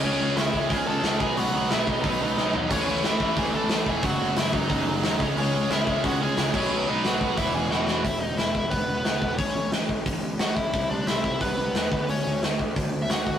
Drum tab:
CC |--------|--------|x-------|--------|
HH |--o-o-o-|o-o-o---|o-o-o-o-|o-o-o-o-|
SD |--o---o-|--o---o-|--o---o-|--o---o-|
FT |--------|-------o|--------|--------|
BD |---oo--o|---oo---|o--oo--o|o--oo--o|

CC |-------x|--------|--------|--------|
HH |o-o-o-o-|--o-o---|o-o-o-o-|o-o-o-o-|
SD |--o---o-|--o---oo|--o---o-|--o---o-|
FT |--------|--------|--------|--------|
BD |---oo--o|---oo---|o--oo--o|o--oo--o|

CC |--------|--------|
HH |o-o-o-o-|o-o-o-o-|
SD |--o---o-|--o---o-|
FT |--------|--------|
BD |o--oo--o|---oo--o|